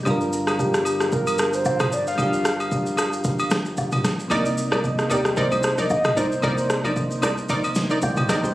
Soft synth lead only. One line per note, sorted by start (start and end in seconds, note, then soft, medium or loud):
0.60 1.15 G4 medium
1.14 1.56 A#4 loud
1.54 1.95 C5 loud
1.93 2.07 D5 loud
2.08 3.09 F5 loud
5.12 5.40 G4 medium
5.38 5.81 C5 loud
5.79 6.20 D#5 loud
6.18 6.97 C5 loud